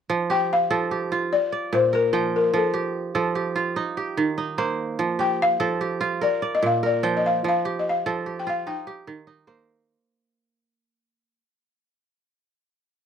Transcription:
0.10 F3
0.30 G4 G5
0.53 F5
0.70 F3 A4
0.91 G4
1.12 F4
1.33 D5
1.52 D5
1.73 A#2 C5
1.93 A#4
2.13 F3 G5
2.36 A#4
2.54 F3 A4
2.74 G4
3.15 F3 A4
3.35 G4
3.56 F4
3.76 D#4
3.97 G4
4.17 D#3
4.38 D#4
4.58 A#3 C5
4.99 F3
5.19 G4 G5
5.42 F5
5.60 F3 A4
5.81 G4
6.01 F4
6.21 A#4 D5
6.42 D5
6.55 D#5
6.63 A#2 F5
6.83 A#4 D5
7.03 F3 G5
7.17 D#5
7.26 F5
7.44 F3
7.49 F5
7.65 G4
7.79 D#5
7.89 F5
8.06 F3 A4
8.26 G4
8.39 G5
8.47 F4 F5
8.67 D#4 G5
8.87 G4
9.07 D#3
9.27 D#4
9.47 A#3 C5

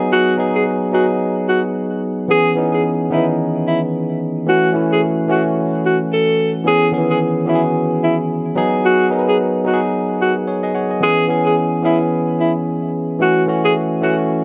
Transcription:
Already playing: F#3 B3 D#4 G#4
0.12 F#4
0.37 F#3 B3 D#4 G#4
0.55 G#4
0.92 F#3 B3 D#4 F#4 G#4
1.49 F#4
2.28 E3 B3 C#4 G#4
2.55 E3 B3 C#4 D#4
2.74 G#4
3.10 D#3 B3 C#4 D#4 E4
3.16 E3
3.68 E4
4.46 E3 A3 C#4 F#4
4.73 E3 A3 C#4 E4
4.92 G#4
5.28 E3 A3 C#4 F#4
5.86 F#4
6.13 A4
6.64 E3 B3 C#4 G#4
6.92 D#3 B3 C#4 G#4
6.98 E3
7.10 G#4
7.46 E3 B3 C#4 E4 F#4
7.55 G#4
8.04 E4
8.55 F#3 B3 D#4 G#4
8.85 F#4
9.10 F#3 B3 D#4 A#4
9.19 B4
9.29 G#4
9.65 F#3 B3 D#4 F#4
9.74 G#4
10.22 F#4
10.47 G#4 C#5
10.63 G#4 D#5
10.75 C#5 F#5
10.90 D#5 G#5
11.00 E3 B3 C#4 G#4
11.28 E3 B3 C#4 G#4
11.46 G#4
11.83 E3 B3 C#4 E4 G#4
12.40 E4
13.19 E3 A3 C#4 F#4
13.46 E3 A3 C#4 F#4
13.65 G#4
14.01 E3 A3 C#4 F#4

